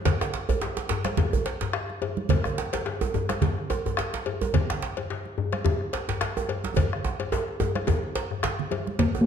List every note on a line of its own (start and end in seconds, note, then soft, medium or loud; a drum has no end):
0.05 bombo low medium
0.05 cowbell medium
0.05 djembe slap medium
0.05 djembe slap loud
0.05 djembe bass medium
0.05 low conga medium
0.21 bombo rim medium
0.21 djembe slap medium
0.34 djembe slap medium
0.49 bombo rim soft
0.49 cowbell soft
0.49 high conga soft
0.49 djembe tone medium
0.49 djembe bass medium
0.61 bombo rim soft
0.61 djembe slap medium
0.77 djembe slap medium
0.77 high conga soft
0.89 djembe slap loud
0.89 djembe bass medium
1.05 bombo rim medium
1.05 cowbell soft
1.05 djembe slap medium
1.05 high conga medium
1.17 bombo low medium
1.17 djembe slap medium
1.17 high conga soft
1.17 djembe tone medium
1.17 low conga medium
1.33 bombo rim soft
1.33 djembe slap soft
1.33 djembe bass medium
1.45 cowbell soft
1.45 djembe slap medium
1.45 djembe slap soft
1.45 high conga soft
1.61 djembe slap medium
1.61 djembe slap soft
1.61 high conga soft
1.61 djembe bass medium
1.73 bombo rim loud
1.73 djembe slap medium
1.89 bombo rim soft
1.89 high conga soft
2.02 cowbell soft
2.02 djembe tone medium
2.17 high conga medium
2.29 bombo low loud
2.29 cowbell medium
2.29 djembe slap medium
2.29 djembe tone medium
2.29 low conga medium
2.29 djembe bass medium
2.44 bombo rim medium
2.44 djembe tone medium
2.58 djembe slap medium
2.73 bombo rim soft
2.73 cowbell medium
2.73 djembe slap medium
2.73 high conga soft
2.73 djembe tone medium
2.85 bombo rim soft
2.85 djembe slap medium
3.01 high conga soft
3.01 djembe tone loud
3.14 djembe tone medium
3.14 djembe bass medium
3.29 bombo rim medium
3.29 cowbell soft
3.29 djembe slap medium
3.29 high conga medium
3.41 bombo low medium
3.41 djembe slap medium
3.41 high conga soft
3.41 djembe tone medium
3.41 low conga medium
3.58 bombo rim soft
3.58 djembe slap soft
3.70 cowbell soft
3.70 djembe tone loud
3.86 djembe slap soft
3.86 high conga soft
3.86 djembe tone medium
3.86 djembe bass medium
3.97 bombo rim loud
3.97 djembe slap medium
4.13 bombo rim soft
4.13 djembe slap medium
4.13 high conga soft
4.26 cowbell soft
4.26 djembe tone medium
4.41 djembe tone loud
4.41 high conga medium
4.53 bombo low loud
4.53 cowbell medium
4.53 djembe slap medium
4.53 djembe tone medium
4.53 djembe bass medium
4.53 low conga medium
4.70 bombo rim medium
4.70 djembe slap medium
4.82 djembe slap medium
4.97 bombo rim soft
4.97 cowbell soft
4.97 djembe tone medium
4.97 high conga soft
5.10 bombo rim soft
5.10 djembe slap medium
5.25 high conga soft
5.38 djembe bass medium
5.52 bombo rim medium
5.52 cowbell soft
5.52 high conga medium
5.65 bombo low medium
5.65 djembe slap medium
5.65 djembe tone medium
5.65 high conga soft
5.65 low conga medium
5.80 bombo rim soft
5.80 djembe slap soft
5.93 cowbell medium
5.93 djembe slap soft
5.93 djembe slap medium
5.93 high conga soft
6.08 djembe slap soft
6.08 djembe slap medium
6.08 high conga soft
6.08 djembe bass medium
6.21 bombo rim medium
6.21 djembe slap medium
6.37 bombo rim soft
6.37 high conga soft
6.37 djembe tone medium
6.49 cowbell soft
6.49 djembe tone medium
6.64 djembe slap medium
6.64 high conga medium
6.76 bombo rim soft
6.76 bombo low medium
6.76 cowbell medium
6.76 djembe slap medium
6.76 djembe tone medium
6.76 high conga soft
6.76 djembe bass medium
6.76 low conga medium
6.93 bombo rim medium
7.05 bombo rim soft
7.05 djembe slap soft
7.05 djembe tone loud
7.20 bombo rim soft
7.20 cowbell medium
7.20 djembe tone medium
7.20 high conga soft
7.32 bombo rim soft
7.32 djembe slap medium
7.32 djembe tone medium
7.48 bombo rim soft
7.48 high conga soft
7.60 djembe tone loud
7.60 djembe bass medium
7.75 bombo rim medium
7.75 cowbell medium
7.75 djembe slap soft
7.75 high conga medium
7.87 bombo rim soft
7.87 bombo low medium
7.87 djembe slap medium
7.87 djembe tone medium
7.87 low conga medium
8.03 high conga soft
8.15 cowbell soft
8.15 djembe slap loud
8.31 bombo rim soft
8.31 djembe bass medium
8.43 bombo rim loud
8.43 djembe slap medium
8.43 djembe slap loud
8.43 low conga soft
8.58 bombo rim soft
8.58 djembe slap soft
8.58 low conga medium
8.71 cowbell soft
8.71 djembe tone medium
8.71 high conga medium
8.87 bombo rim soft
8.87 high conga medium
8.99 9.21 A#3 medium
8.99 bombo low loud
8.99 cowbell medium
8.99 djembe slap soft
8.99 djembe slap medium
8.99 djembe bass medium
8.99 low conga medium
9.15 djembe tone medium
9.21 9.26 A#3 medium